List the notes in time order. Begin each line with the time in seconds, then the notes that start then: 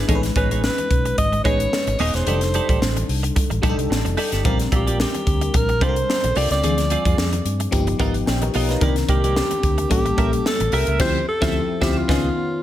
Already playing: G#3 D4 B4
0.08 A1 G#3 B3 C#4 D#4 G#4 A4 C#5, kick, closed hi-hat, muted conga, low conga
0.15 B4
0.23 muted clean electric guitar stroke, snare, closed hi-hat, muted conga
0.36 A1 B3 D#4 G#4 B4 C#5, kick, closed hi-hat, high conga
0.51 B3 D#4 G#4 C#5, closed hi-hat, high conga
0.63 B4, snare, muted conga, high conga
0.78 muted clean electric guitar stroke, closed hi-hat, low conga
0.91 B1, kick, closed hi-hat
1.05 muted clean electric guitar stroke, closed hi-hat
1.18 G#1 D#5, muted clean electric guitar stroke, kick, closed hi-hat, muted conga, high conga
1.32 muted clean electric guitar stroke, closed hi-hat, muted conga
1.44 A1 G#3 B3 C#4 D#4 G#4 B4 C#5, kick, closed hi-hat, high conga
1.60 muted clean electric guitar stroke, closed hi-hat
1.73 muted clean electric guitar stroke, snare
1.87 G#1, muted clean electric guitar stroke, closed hi-hat, low conga
1.99 D#1 B3 D#4 G#4 C#5 D#5, open hi-hat
2.14 E1 B3 D#4 G#4 C5 C#5, snare, closed hi-hat
2.27 F1 G3 D4 D#4 G4 A4 D5, closed hi-hat, muted conga, low conga
2.41 muted clean electric guitar stroke, snare, closed hi-hat, muted conga
2.54 D#4 G4 A4 D5, closed hi-hat, high conga
2.69 A1 D#4 G4 A4 D5, kick, closed hi-hat, high conga
2.81 A1, muted clean electric guitar stroke, snare, muted conga, high conga
2.96 muted clean electric guitar stroke, closed hi-hat, muted conga, low conga
3.09 C2, open hi-hat
3.23 muted clean electric guitar stroke, closed hi-hat
3.36 muted clean electric guitar stroke, kick, closed hi-hat, muted conga, high conga
3.50 A1, muted clean electric guitar stroke, closed hi-hat, muted conga
3.62 A#1 G3 D4 D#4 G4 A4 D5, kick, closed hi-hat, high conga
3.69 A4
3.78 C2, muted clean electric guitar stroke, closed hi-hat
3.90 A1, muted clean electric guitar stroke, snare
4.05 F1, muted clean electric guitar stroke, closed hi-hat, low conga
4.17 D#4 G4 A4 D5, open hi-hat
4.32 G1 D#4 G4 A4 D5, snare, closed hi-hat
4.44 A#1 G3 C4 D4 F4 G4 A#4 D5, kick, closed hi-hat, muted conga, low conga
4.59 muted clean electric guitar stroke, snare, closed hi-hat
4.72 A#1 C4 F4 G4 D5, kick, closed hi-hat, high conga
4.87 C4 F4 G4 D5, closed hi-hat, high conga
4.99 G4, muted clean electric guitar stroke, snare, muted conga, high conga
5.14 muted clean electric guitar stroke, closed hi-hat, low conga
5.27 D2, kick, closed hi-hat
5.41 muted clean electric guitar stroke, closed hi-hat
5.54 A#1 A#4, muted clean electric guitar stroke, kick, closed hi-hat, high conga
5.69 muted clean electric guitar stroke, closed hi-hat, muted conga
5.81 C2 G3 C4 D4 F4 G4 A4 C5 D5, kick, closed hi-hat, high conga
5.89 A#4
5.96 muted clean electric guitar stroke, closed hi-hat
6.09 muted clean electric guitar stroke, snare
6.24 A#1, muted clean electric guitar stroke, closed hi-hat, muted conga, low conga
6.36 C2 C4 F4 G4 D5, open hi-hat
6.50 C#2 C4 F4 G4 D5, snare, closed hi-hat
6.62 D2 E3 C4 D4 F4 G#4 D5, closed hi-hat, muted conga, low conga
6.69 F3
6.78 muted clean electric guitar stroke, snare, closed hi-hat, muted conga
6.90 C4 F4 G#4 D5, closed hi-hat, high conga
7.05 F2 C4 F4 G#4 D5, kick, closed hi-hat, high conga
7.18 F2, snare, muted conga, high conga
7.33 muted clean electric guitar stroke, closed hi-hat, muted conga, low conga
7.45 G2, closed hi-hat
7.60 muted clean electric guitar stroke, closed hi-hat
7.71 G1 F3 B3 D#4 G4, muted clean electric guitar stroke, kick, closed hi-hat, high conga
7.87 muted clean electric guitar stroke, closed hi-hat
7.98 G#1 F3 B3 D#4 F4 G4 A#4 D#5, kick, closed hi-hat, high conga
8.14 muted clean electric guitar stroke, closed hi-hat
8.26 A#1 C#5 G5, muted clean electric guitar stroke, snare
8.41 A#4 D#5, muted clean electric guitar stroke, closed hi-hat, low conga
8.54 B1 B3 F4 A#4 D#5, open hi-hat
8.68 B3 F4 A#4 B4 D#5, snare, closed hi-hat
8.80 C2 D#3 A#3 C4 D4 D#4 G4 A#4 D5, kick, closed hi-hat, low conga
8.96 snare, closed hi-hat
9.09 C2 A#3 D#4 G4 D5, kick, closed hi-hat, high conga
9.24 A#3 D#4 G4 D5, closed hi-hat, high conga
9.36 muted clean electric guitar stroke, snare, muted conga, high conga
9.51 muted clean electric guitar stroke, closed hi-hat, low conga
9.63 D2, kick, closed hi-hat
9.78 muted clean electric guitar stroke, closed hi-hat
9.89 A1 G3 A#3 C#4 G4 A4, muted clean electric guitar stroke, kick, closed hi-hat, high conga
10.05 muted clean electric guitar stroke, closed hi-hat
10.17 A#1 G3 A#3 C#4 G4 A4 A#4 E5, kick, closed hi-hat, high conga
10.33 muted clean electric guitar stroke, closed hi-hat
10.45 A4, muted clean electric guitar stroke, snare
10.60 A1, muted clean electric guitar stroke, closed hi-hat, muted conga, low conga
10.72 C2 C#4 G4 A#4 E5, open hi-hat
10.87 C#2 C#4 G4 A#4 E5, closed hi-hat
10.99 D2 F3 C4 E4 F4 G4 C5 E5, kick, snare, crash
11.28 A4
11.41 D2 F3 C4 E4 F4 G4 C5 E5, kick, snare
11.81 D2 F3 C4 E4 F4 G4 C5 E5, kick, snare
11.98 F4
12.08 C#2 D#3 B3 C#4 F4 G#4 D#5, kick, snare